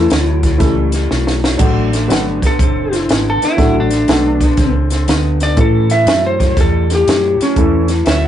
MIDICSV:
0, 0, Header, 1, 8, 480
1, 0, Start_track
1, 0, Key_signature, 3, "major"
1, 0, Tempo, 496689
1, 1541, Time_signature, 4, 2, 24, 8
1, 8000, End_track
2, 0, Start_track
2, 0, Title_t, "Harmonica"
2, 0, Program_c, 0, 22
2, 7800, Note_on_c, 0, 71, 72
2, 7800, Note_on_c, 0, 73, 72
2, 7800, Note_on_c, 0, 76, 103
2, 7870, Note_off_c, 0, 71, 0
2, 7883, Note_off_c, 0, 73, 0
2, 7999, Note_off_c, 0, 76, 0
2, 8000, End_track
3, 0, Start_track
3, 0, Title_t, "Electric slide guitar"
3, 0, Program_c, 1, 29
3, 0, Note_on_c, 1, 64, 84
3, 722, Note_off_c, 1, 64, 0
3, 2382, Note_on_c, 1, 69, 79
3, 2854, Note_off_c, 1, 69, 0
3, 2854, Note_on_c, 1, 64, 65
3, 3149, Note_off_c, 1, 64, 0
3, 3187, Note_on_c, 1, 69, 74
3, 3320, Note_off_c, 1, 69, 0
3, 3332, Note_on_c, 1, 64, 97
3, 3628, Note_off_c, 1, 64, 0
3, 3672, Note_on_c, 1, 62, 93
3, 4579, Note_off_c, 1, 62, 0
3, 5247, Note_on_c, 1, 74, 94
3, 5390, Note_off_c, 1, 74, 0
3, 5418, Note_on_c, 1, 69, 87
3, 5711, Note_off_c, 1, 69, 0
3, 5715, Note_on_c, 1, 76, 86
3, 6019, Note_off_c, 1, 76, 0
3, 6054, Note_on_c, 1, 72, 71
3, 6349, Note_off_c, 1, 72, 0
3, 6385, Note_on_c, 1, 69, 85
3, 6674, Note_off_c, 1, 69, 0
3, 6714, Note_on_c, 1, 67, 79
3, 7154, Note_off_c, 1, 67, 0
3, 7179, Note_on_c, 1, 61, 85
3, 7626, Note_off_c, 1, 61, 0
3, 8000, End_track
4, 0, Start_track
4, 0, Title_t, "Grand piano"
4, 0, Program_c, 2, 0
4, 557, Note_on_c, 2, 52, 78
4, 565, Note_on_c, 2, 57, 63
4, 567, Note_on_c, 2, 61, 71
4, 568, Note_on_c, 2, 64, 70
4, 582, Note_on_c, 2, 69, 78
4, 853, Note_off_c, 2, 52, 0
4, 857, Note_off_c, 2, 57, 0
4, 858, Note_off_c, 2, 61, 0
4, 859, Note_off_c, 2, 64, 0
4, 865, Note_off_c, 2, 69, 0
4, 1520, Note_on_c, 2, 57, 65
4, 1522, Note_on_c, 2, 54, 62
4, 1525, Note_on_c, 2, 62, 62
4, 1533, Note_on_c, 2, 66, 61
4, 1533, Note_on_c, 2, 69, 75
4, 1815, Note_off_c, 2, 57, 0
4, 1816, Note_off_c, 2, 54, 0
4, 1817, Note_off_c, 2, 62, 0
4, 1821, Note_off_c, 2, 66, 0
4, 1821, Note_off_c, 2, 69, 0
4, 2001, Note_on_c, 2, 54, 62
4, 2006, Note_on_c, 2, 57, 53
4, 2012, Note_on_c, 2, 62, 52
4, 2015, Note_on_c, 2, 66, 54
4, 2017, Note_on_c, 2, 71, 64
4, 2295, Note_off_c, 2, 54, 0
4, 2298, Note_off_c, 2, 57, 0
4, 2301, Note_off_c, 2, 62, 0
4, 2302, Note_off_c, 2, 66, 0
4, 2303, Note_off_c, 2, 71, 0
4, 3445, Note_on_c, 2, 54, 65
4, 3453, Note_on_c, 2, 57, 68
4, 3453, Note_on_c, 2, 66, 66
4, 3455, Note_on_c, 2, 62, 62
4, 3465, Note_on_c, 2, 69, 76
4, 3738, Note_off_c, 2, 54, 0
4, 3742, Note_off_c, 2, 57, 0
4, 3742, Note_off_c, 2, 62, 0
4, 3742, Note_off_c, 2, 66, 0
4, 3747, Note_off_c, 2, 69, 0
4, 3940, Note_on_c, 2, 54, 63
4, 3944, Note_on_c, 2, 57, 56
4, 3948, Note_on_c, 2, 62, 56
4, 3956, Note_on_c, 2, 66, 60
4, 3956, Note_on_c, 2, 69, 66
4, 4225, Note_off_c, 2, 54, 0
4, 4227, Note_off_c, 2, 57, 0
4, 4229, Note_off_c, 2, 62, 0
4, 4233, Note_off_c, 2, 66, 0
4, 4233, Note_off_c, 2, 69, 0
4, 5369, Note_on_c, 2, 52, 62
4, 5373, Note_on_c, 2, 57, 59
4, 5375, Note_on_c, 2, 61, 58
4, 5382, Note_on_c, 2, 64, 56
4, 5384, Note_on_c, 2, 69, 67
4, 6108, Note_off_c, 2, 52, 0
4, 6110, Note_off_c, 2, 57, 0
4, 6111, Note_off_c, 2, 61, 0
4, 6114, Note_off_c, 2, 64, 0
4, 6115, Note_off_c, 2, 69, 0
4, 7302, Note_on_c, 2, 52, 73
4, 7306, Note_on_c, 2, 57, 63
4, 7314, Note_on_c, 2, 61, 66
4, 7314, Note_on_c, 2, 64, 68
4, 7318, Note_on_c, 2, 69, 82
4, 7586, Note_off_c, 2, 52, 0
4, 7588, Note_off_c, 2, 57, 0
4, 7591, Note_off_c, 2, 61, 0
4, 7591, Note_off_c, 2, 64, 0
4, 7594, Note_off_c, 2, 69, 0
4, 8000, End_track
5, 0, Start_track
5, 0, Title_t, "Clean electric guitar"
5, 0, Program_c, 3, 27
5, 115, Note_on_c, 3, 45, 80
5, 126, Note_on_c, 3, 54, 83
5, 392, Note_off_c, 3, 45, 0
5, 397, Note_off_c, 3, 54, 0
5, 432, Note_on_c, 3, 45, 71
5, 442, Note_on_c, 3, 54, 76
5, 572, Note_off_c, 3, 45, 0
5, 578, Note_off_c, 3, 54, 0
5, 604, Note_on_c, 3, 45, 72
5, 606, Note_on_c, 3, 55, 88
5, 877, Note_off_c, 3, 45, 0
5, 877, Note_off_c, 3, 55, 0
5, 909, Note_on_c, 3, 45, 67
5, 913, Note_on_c, 3, 55, 85
5, 1051, Note_off_c, 3, 45, 0
5, 1053, Note_off_c, 3, 55, 0
5, 1070, Note_on_c, 3, 45, 82
5, 1074, Note_on_c, 3, 54, 83
5, 1350, Note_off_c, 3, 45, 0
5, 1352, Note_off_c, 3, 54, 0
5, 1390, Note_on_c, 3, 45, 67
5, 1394, Note_on_c, 3, 54, 77
5, 1532, Note_off_c, 3, 45, 0
5, 1534, Note_off_c, 3, 54, 0
5, 1557, Note_on_c, 3, 50, 82
5, 1560, Note_on_c, 3, 57, 77
5, 1833, Note_off_c, 3, 50, 0
5, 1835, Note_off_c, 3, 57, 0
5, 1866, Note_on_c, 3, 50, 69
5, 1871, Note_on_c, 3, 57, 84
5, 2010, Note_off_c, 3, 50, 0
5, 2012, Note_off_c, 3, 57, 0
5, 2021, Note_on_c, 3, 50, 83
5, 2029, Note_on_c, 3, 59, 88
5, 2306, Note_off_c, 3, 50, 0
5, 2309, Note_off_c, 3, 59, 0
5, 2348, Note_on_c, 3, 50, 65
5, 2353, Note_on_c, 3, 59, 77
5, 2491, Note_off_c, 3, 50, 0
5, 2493, Note_off_c, 3, 59, 0
5, 2509, Note_on_c, 3, 50, 74
5, 2514, Note_on_c, 3, 60, 84
5, 2790, Note_off_c, 3, 50, 0
5, 2792, Note_off_c, 3, 60, 0
5, 2814, Note_on_c, 3, 50, 69
5, 2824, Note_on_c, 3, 60, 76
5, 2964, Note_off_c, 3, 50, 0
5, 2969, Note_off_c, 3, 60, 0
5, 2981, Note_on_c, 3, 50, 85
5, 2991, Note_on_c, 3, 59, 88
5, 3265, Note_off_c, 3, 50, 0
5, 3270, Note_off_c, 3, 59, 0
5, 3306, Note_on_c, 3, 50, 73
5, 3310, Note_on_c, 3, 59, 77
5, 3450, Note_off_c, 3, 50, 0
5, 3452, Note_off_c, 3, 59, 0
5, 3469, Note_on_c, 3, 50, 77
5, 3470, Note_on_c, 3, 57, 99
5, 3749, Note_off_c, 3, 50, 0
5, 3750, Note_off_c, 3, 57, 0
5, 3773, Note_on_c, 3, 50, 70
5, 3777, Note_on_c, 3, 57, 74
5, 3923, Note_off_c, 3, 50, 0
5, 3926, Note_off_c, 3, 57, 0
5, 3947, Note_on_c, 3, 50, 78
5, 3951, Note_on_c, 3, 59, 86
5, 4228, Note_off_c, 3, 50, 0
5, 4230, Note_off_c, 3, 59, 0
5, 4269, Note_on_c, 3, 50, 63
5, 4272, Note_on_c, 3, 59, 83
5, 4411, Note_off_c, 3, 50, 0
5, 4413, Note_off_c, 3, 59, 0
5, 4429, Note_on_c, 3, 50, 75
5, 4432, Note_on_c, 3, 60, 87
5, 4709, Note_off_c, 3, 50, 0
5, 4711, Note_off_c, 3, 60, 0
5, 4751, Note_on_c, 3, 50, 80
5, 4754, Note_on_c, 3, 60, 85
5, 4893, Note_off_c, 3, 50, 0
5, 4894, Note_off_c, 3, 60, 0
5, 4913, Note_on_c, 3, 50, 82
5, 4917, Note_on_c, 3, 59, 94
5, 5191, Note_off_c, 3, 50, 0
5, 5193, Note_off_c, 3, 59, 0
5, 5230, Note_on_c, 3, 50, 75
5, 5232, Note_on_c, 3, 59, 85
5, 5372, Note_off_c, 3, 50, 0
5, 5373, Note_off_c, 3, 59, 0
5, 5390, Note_on_c, 3, 45, 78
5, 5395, Note_on_c, 3, 52, 91
5, 5670, Note_off_c, 3, 45, 0
5, 5672, Note_off_c, 3, 52, 0
5, 5696, Note_on_c, 3, 45, 67
5, 5701, Note_on_c, 3, 52, 83
5, 5845, Note_off_c, 3, 45, 0
5, 5847, Note_off_c, 3, 52, 0
5, 5867, Note_on_c, 3, 45, 80
5, 5867, Note_on_c, 3, 54, 84
5, 6148, Note_off_c, 3, 45, 0
5, 6148, Note_off_c, 3, 54, 0
5, 6176, Note_on_c, 3, 45, 72
5, 6181, Note_on_c, 3, 54, 84
5, 6325, Note_off_c, 3, 45, 0
5, 6327, Note_off_c, 3, 54, 0
5, 6349, Note_on_c, 3, 45, 77
5, 6355, Note_on_c, 3, 55, 90
5, 6629, Note_off_c, 3, 45, 0
5, 6632, Note_off_c, 3, 55, 0
5, 6670, Note_on_c, 3, 45, 70
5, 6678, Note_on_c, 3, 55, 74
5, 6812, Note_off_c, 3, 45, 0
5, 6816, Note_off_c, 3, 55, 0
5, 6843, Note_on_c, 3, 45, 83
5, 6844, Note_on_c, 3, 54, 87
5, 7116, Note_off_c, 3, 45, 0
5, 7117, Note_off_c, 3, 54, 0
5, 7150, Note_on_c, 3, 45, 68
5, 7156, Note_on_c, 3, 54, 76
5, 7292, Note_off_c, 3, 45, 0
5, 7295, Note_off_c, 3, 54, 0
5, 7320, Note_on_c, 3, 45, 74
5, 7329, Note_on_c, 3, 52, 85
5, 7595, Note_off_c, 3, 45, 0
5, 7599, Note_off_c, 3, 52, 0
5, 7637, Note_on_c, 3, 45, 80
5, 7639, Note_on_c, 3, 52, 88
5, 7775, Note_off_c, 3, 45, 0
5, 7776, Note_off_c, 3, 52, 0
5, 7799, Note_on_c, 3, 45, 81
5, 7806, Note_on_c, 3, 54, 84
5, 8000, Note_off_c, 3, 45, 0
5, 8000, Note_off_c, 3, 54, 0
5, 8000, End_track
6, 0, Start_track
6, 0, Title_t, "Fingered electric bass"
6, 0, Program_c, 4, 33
6, 109, Note_on_c, 4, 38, 96
6, 571, Note_off_c, 4, 38, 0
6, 584, Note_on_c, 4, 37, 82
6, 1049, Note_off_c, 4, 37, 0
6, 1073, Note_on_c, 4, 35, 79
6, 1533, Note_off_c, 4, 35, 0
6, 1544, Note_on_c, 4, 33, 79
6, 2009, Note_off_c, 4, 33, 0
6, 2020, Note_on_c, 4, 31, 91
6, 2314, Note_off_c, 4, 31, 0
6, 2507, Note_on_c, 4, 30, 81
6, 2970, Note_off_c, 4, 30, 0
6, 2995, Note_on_c, 4, 32, 77
6, 3282, Note_off_c, 4, 32, 0
6, 3467, Note_on_c, 4, 33, 78
6, 3930, Note_off_c, 4, 33, 0
6, 3948, Note_on_c, 4, 35, 90
6, 4411, Note_off_c, 4, 35, 0
6, 4423, Note_on_c, 4, 37, 85
6, 4888, Note_off_c, 4, 37, 0
6, 4908, Note_on_c, 4, 38, 90
6, 5371, Note_off_c, 4, 38, 0
6, 5386, Note_on_c, 4, 45, 81
6, 5850, Note_off_c, 4, 45, 0
6, 5856, Note_on_c, 4, 42, 91
6, 6325, Note_off_c, 4, 42, 0
6, 6350, Note_on_c, 4, 40, 82
6, 6811, Note_off_c, 4, 40, 0
6, 6836, Note_on_c, 4, 42, 77
6, 7123, Note_off_c, 4, 42, 0
6, 7311, Note_on_c, 4, 40, 81
6, 7772, Note_off_c, 4, 40, 0
6, 7794, Note_on_c, 4, 38, 94
6, 8000, Note_off_c, 4, 38, 0
6, 8000, End_track
7, 0, Start_track
7, 0, Title_t, "Muted fingered electric bass strokes"
7, 7148, Note_on_c, 9, 29, 39
7, 7245, Note_off_c, 9, 29, 0
7, 8000, End_track
8, 0, Start_track
8, 0, Title_t, "Drums"
8, 99, Note_on_c, 9, 42, 75
8, 113, Note_on_c, 9, 38, 108
8, 196, Note_off_c, 9, 42, 0
8, 209, Note_off_c, 9, 38, 0
8, 417, Note_on_c, 9, 42, 61
8, 419, Note_on_c, 9, 36, 76
8, 430, Note_on_c, 9, 38, 31
8, 513, Note_off_c, 9, 42, 0
8, 515, Note_off_c, 9, 36, 0
8, 527, Note_off_c, 9, 38, 0
8, 580, Note_on_c, 9, 42, 77
8, 583, Note_on_c, 9, 36, 100
8, 594, Note_on_c, 9, 38, 31
8, 677, Note_off_c, 9, 42, 0
8, 680, Note_off_c, 9, 36, 0
8, 690, Note_off_c, 9, 38, 0
8, 891, Note_on_c, 9, 42, 57
8, 905, Note_on_c, 9, 38, 32
8, 988, Note_off_c, 9, 42, 0
8, 1001, Note_off_c, 9, 38, 0
8, 1071, Note_on_c, 9, 38, 58
8, 1167, Note_off_c, 9, 38, 0
8, 1229, Note_on_c, 9, 38, 62
8, 1326, Note_off_c, 9, 38, 0
8, 1392, Note_on_c, 9, 38, 89
8, 1489, Note_off_c, 9, 38, 0
8, 1538, Note_on_c, 9, 42, 85
8, 1538, Note_on_c, 9, 49, 73
8, 1543, Note_on_c, 9, 36, 93
8, 1634, Note_off_c, 9, 42, 0
8, 1634, Note_off_c, 9, 49, 0
8, 1639, Note_off_c, 9, 36, 0
8, 1867, Note_on_c, 9, 42, 61
8, 1881, Note_on_c, 9, 38, 35
8, 1964, Note_off_c, 9, 42, 0
8, 1978, Note_off_c, 9, 38, 0
8, 2032, Note_on_c, 9, 42, 77
8, 2046, Note_on_c, 9, 38, 100
8, 2129, Note_off_c, 9, 42, 0
8, 2143, Note_off_c, 9, 38, 0
8, 2343, Note_on_c, 9, 36, 75
8, 2346, Note_on_c, 9, 42, 58
8, 2360, Note_on_c, 9, 38, 33
8, 2439, Note_off_c, 9, 36, 0
8, 2443, Note_off_c, 9, 42, 0
8, 2456, Note_off_c, 9, 38, 0
8, 2506, Note_on_c, 9, 36, 98
8, 2510, Note_on_c, 9, 42, 74
8, 2603, Note_off_c, 9, 36, 0
8, 2607, Note_off_c, 9, 42, 0
8, 2830, Note_on_c, 9, 42, 57
8, 2844, Note_on_c, 9, 38, 30
8, 2927, Note_off_c, 9, 42, 0
8, 2940, Note_off_c, 9, 38, 0
8, 2988, Note_on_c, 9, 42, 67
8, 3002, Note_on_c, 9, 38, 102
8, 3085, Note_off_c, 9, 42, 0
8, 3098, Note_off_c, 9, 38, 0
8, 3306, Note_on_c, 9, 42, 52
8, 3319, Note_on_c, 9, 38, 32
8, 3402, Note_off_c, 9, 42, 0
8, 3416, Note_off_c, 9, 38, 0
8, 3462, Note_on_c, 9, 36, 101
8, 3466, Note_on_c, 9, 42, 67
8, 3479, Note_on_c, 9, 38, 31
8, 3559, Note_off_c, 9, 36, 0
8, 3562, Note_off_c, 9, 42, 0
8, 3576, Note_off_c, 9, 38, 0
8, 3775, Note_on_c, 9, 42, 59
8, 3788, Note_on_c, 9, 38, 32
8, 3871, Note_off_c, 9, 42, 0
8, 3885, Note_off_c, 9, 38, 0
8, 3942, Note_on_c, 9, 42, 72
8, 3955, Note_on_c, 9, 38, 109
8, 4039, Note_off_c, 9, 42, 0
8, 4052, Note_off_c, 9, 38, 0
8, 4258, Note_on_c, 9, 36, 74
8, 4260, Note_on_c, 9, 42, 59
8, 4273, Note_on_c, 9, 38, 31
8, 4354, Note_off_c, 9, 36, 0
8, 4356, Note_off_c, 9, 42, 0
8, 4370, Note_off_c, 9, 38, 0
8, 4418, Note_on_c, 9, 42, 77
8, 4423, Note_on_c, 9, 36, 102
8, 4431, Note_on_c, 9, 38, 33
8, 4515, Note_off_c, 9, 42, 0
8, 4519, Note_off_c, 9, 36, 0
8, 4528, Note_off_c, 9, 38, 0
8, 4739, Note_on_c, 9, 42, 63
8, 4753, Note_on_c, 9, 38, 34
8, 4836, Note_off_c, 9, 42, 0
8, 4849, Note_off_c, 9, 38, 0
8, 4908, Note_on_c, 9, 42, 80
8, 4921, Note_on_c, 9, 38, 104
8, 5004, Note_off_c, 9, 42, 0
8, 5018, Note_off_c, 9, 38, 0
8, 5222, Note_on_c, 9, 42, 59
8, 5236, Note_on_c, 9, 38, 32
8, 5319, Note_off_c, 9, 42, 0
8, 5332, Note_off_c, 9, 38, 0
8, 5382, Note_on_c, 9, 42, 75
8, 5386, Note_on_c, 9, 36, 107
8, 5479, Note_off_c, 9, 42, 0
8, 5482, Note_off_c, 9, 36, 0
8, 5700, Note_on_c, 9, 42, 64
8, 5713, Note_on_c, 9, 38, 34
8, 5796, Note_off_c, 9, 42, 0
8, 5810, Note_off_c, 9, 38, 0
8, 5864, Note_on_c, 9, 42, 82
8, 5878, Note_on_c, 9, 38, 103
8, 5961, Note_off_c, 9, 42, 0
8, 5974, Note_off_c, 9, 38, 0
8, 6186, Note_on_c, 9, 36, 74
8, 6188, Note_on_c, 9, 42, 61
8, 6202, Note_on_c, 9, 38, 33
8, 6282, Note_off_c, 9, 36, 0
8, 6285, Note_off_c, 9, 42, 0
8, 6298, Note_off_c, 9, 38, 0
8, 6348, Note_on_c, 9, 36, 102
8, 6348, Note_on_c, 9, 42, 76
8, 6362, Note_on_c, 9, 38, 31
8, 6445, Note_off_c, 9, 36, 0
8, 6445, Note_off_c, 9, 42, 0
8, 6459, Note_off_c, 9, 38, 0
8, 6669, Note_on_c, 9, 42, 62
8, 6682, Note_on_c, 9, 38, 34
8, 6765, Note_off_c, 9, 42, 0
8, 6779, Note_off_c, 9, 38, 0
8, 6838, Note_on_c, 9, 42, 77
8, 6852, Note_on_c, 9, 38, 103
8, 6935, Note_off_c, 9, 42, 0
8, 6949, Note_off_c, 9, 38, 0
8, 7158, Note_on_c, 9, 42, 55
8, 7172, Note_on_c, 9, 38, 29
8, 7255, Note_off_c, 9, 42, 0
8, 7268, Note_off_c, 9, 38, 0
8, 7309, Note_on_c, 9, 42, 71
8, 7310, Note_on_c, 9, 36, 93
8, 7406, Note_off_c, 9, 36, 0
8, 7406, Note_off_c, 9, 42, 0
8, 7618, Note_on_c, 9, 42, 55
8, 7631, Note_on_c, 9, 38, 34
8, 7715, Note_off_c, 9, 42, 0
8, 7728, Note_off_c, 9, 38, 0
8, 7786, Note_on_c, 9, 42, 73
8, 7800, Note_on_c, 9, 38, 97
8, 7883, Note_off_c, 9, 42, 0
8, 7896, Note_off_c, 9, 38, 0
8, 8000, End_track
0, 0, End_of_file